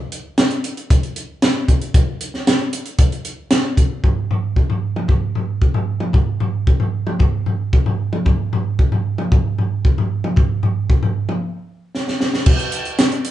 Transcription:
0.12 closed hi-hat
0.38 snare, closed hi-hat
0.51 closed hi-hat
0.64 closed hi-hat
0.77 closed hi-hat
0.90 kick, closed hi-hat
1.03 closed hi-hat
1.16 closed hi-hat
1.42 snare, closed hi-hat
1.68 kick, closed hi-hat
1.81 closed hi-hat
1.94 kick, closed hi-hat
2.21 closed hi-hat
2.34 snare
2.47 snare, closed hi-hat
2.73 closed hi-hat
2.86 closed hi-hat
2.99 kick, closed hi-hat
3.12 closed hi-hat
3.25 closed hi-hat
3.51 snare, closed hi-hat
3.77 kick, closed hi-hat
4.04 kick, floor tom
4.31 floor tom
4.56 kick
4.70 floor tom
4.96 mid tom
5.08 kick, floor tom
5.35 floor tom
5.62 kick
5.74 floor tom
6.00 mid tom
6.13 kick, floor tom
6.40 floor tom
6.67 kick
6.80 floor tom
7.07 mid tom
7.19 kick, floor tom
7.46 floor tom
7.73 kick
7.86 floor tom
8.13 mid tom
8.26 kick, floor tom
8.53 floor tom
8.79 kick
8.92 floor tom
9.18 mid tom
9.32 kick, floor tom
9.58 floor tom
9.85 kick
9.98 floor tom
10.24 mid tom
10.36 kick, floor tom
10.63 floor tom
10.90 kick
11.03 floor tom
11.29 mid tom
11.95 snare
12.08 snare
12.21 snare
12.34 snare
12.46 kick, crash
12.59 closed hi-hat
12.72 closed hi-hat
12.85 closed hi-hat
12.99 snare, closed hi-hat
13.12 closed hi-hat
13.25 closed hi-hat

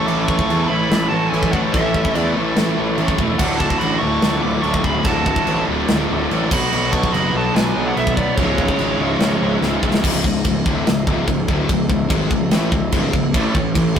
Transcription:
Already playing: A2 E3 A3 C#4 E4 A4
0.07 A1 A2 E3 A3 A4 D6, china
0.27 A2 E3 A3 A4 C#6, kick
0.39 kick
0.49 E2 A2 E3 A3, china
0.68 A1 A2 E3 A3 E4 B5
0.90 A1 A2 E3 A3, snare, china
1.08 A1 F#4 A5
1.13 A2 E3 A3
1.29 A1 A2 E4 G#5
1.33 E3 A3, china
1.43 kick
1.52 A1 A2 E3 A3 C#4 D4 E4 A4 F#5, kick
1.73 A1 A2 E3 A3 C#4 E5, kick, china
1.94 A2 E3 A3, kick
2.05 kick
2.15 E2 A2 E3 A3 B3 D5, china
2.36 A1 A2 E3 A3
2.56 A1 A2 E3 A3, snare, china
2.76 A1 A2 E3 A3
2.98 A1 A2 E3 A3, china
3.08 kick
3.18 E1 A2 E3 A3, kick
3.39 D1 D2 A2 D3 F#3 D4 F#4 F#5, kick, china, crash
3.59 D2 A2 D3 F#4 A5, kick
3.70 kick
3.79 A1 D2 A2 F#4 B5, china
3.83 D3
3.98 A4 C#6
4.03 D1 D2 A2 D3
4.22 D1 D2 A2 D3, snare, china
4.40 D1 D2 B4 D6
4.45 A2 D3
4.62 D1 D2 A2 D3 A4 C#6, china
4.74 kick
4.83 D1 D2 A2 D3 G#4 B5, kick
5.04 D1 D2 A2 D3 F#4 A5, kick, china
5.09 F#3 F#4
5.26 D2 A2 D3, kick
5.36 kick
5.47 A1 D2 A2 D3, china
5.68 D1 D2 A2 D3
5.88 D1 D2 A2 D3, snare, china
6.10 D1 D2 A2 D3
6.31 A1 D2 A2 D3, china
6.51 B1 B2 F#3 B3 D4 F#4 B4 B5, kick, crash
6.73 B1 B2 F#3 B3, china
6.91 B2 F#3 B3 A4 C#6, kick
7.04 kick
7.11 F#1 B2 F#3 F#4 B5, china
7.16 B3
7.32 B1 F#4
7.36 B2 F#3 B3 A5
7.51 D4
7.55 B1 B2 F#3 B3 G#5, snare, china
7.75 B1 B2 F#3 B3
7.82 D4
7.88 F#5
7.94 B1 B2 F#3 B3 E5, china
7.98 B3
8.07 kick
8.15 B1 F#3 B3 D5, kick
8.19 B2 B3
8.35 C#1 C#2 G#3 C#5, kick, china
8.40 G#2 C#3 G#3 E4
8.58 C#2 G#2 C#3, kick
8.68 kick
8.79 G#1 C#2 G#2 C#3, china
8.98 C#1 C#2
9.03 G#2 C#3
9.19 C#1 C#2 G#2 C#3, snare, china
9.40 C#1 C#2 G#2 C#3
9.61 C#1 C#2 G#2 C#3, snare
9.82 C#1 C#2 G#2 C#3, kick
9.94 snare
10.03 C#1 C#2 G#2 C#3, kick, crash
10.23 C#1 C#2 G#2, kick
10.44 C#1 C#2 G#2, kick, crash
10.66 D1 D2 A2 D3, kick
10.87 C#1 C#2 G#2, snare, crash
11.06 C#1 C#2 G#2 C#3, kick
11.28 C#1 C#2 G#2, kick, crash
11.48 D1 D2 A2 D3, kick
11.69 C#1 C#2 G#2, kick, crash
11.89 C#1 C#2 G#2, kick
12.08 G#1 G#2 D#3 G#3, kick, crash
12.31 C#1 C#2 G#2, kick
12.51 A1 A2 E3 A3, snare, crash
12.72 C#1 C#2 G#2, kick
12.92 C#1 C#2 G#2 C#3, kick, crash
13.13 C#1 C#2 G#2, kick
13.33 A1 A2 E3 A3, kick, crash
13.53 A1 A2 E3, kick
13.74 A1 A2 E3, kick, crash
13.94 A2 E3 A3

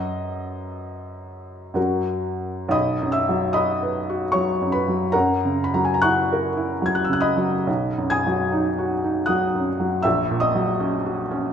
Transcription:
Already playing: F#2 F#3 F#4 B4 D#5
1.74 F#2 F#3 F#4 A#4
2.68 B1 D#5 B5 D#6
3.01 F#2
3.12 E5 E6
3.29 F#3
3.53 F#4 D#5 B5 D#6
3.83 B4
4.09 F#4
4.32 F#3 C#5 C#6
4.62 F#2
4.72 B4 B5
4.88 F#3
5.12 F#2 A#4 F#5 A#5
5.45 C#3
5.64 B5
5.74 F#3 A#5
5.85 G#5
5.94 A#5
6.02 E4 F#5 C#6 F#6
6.33 A#4
6.57 E4
6.82 F#3 G#6
6.95 F#6
7.04 E6
7.09 C#3
7.13 F#6
7.20 D#5 B5 D#6
7.37 F#3
7.67 B1
7.98 F#2
8.10 G#5 D#6 G#6
8.27 F#3
8.52 D#4
8.79 F#4
9.04 D#4
9.26 F#3 F#5 D#6 F#6
9.55 F#2
9.80 F#3
10.03 A#1 E5 E6
10.31 A#2
10.40 D#5 D#6
10.55 F#3
10.80 C#4
11.06 F#4
11.31 C#4

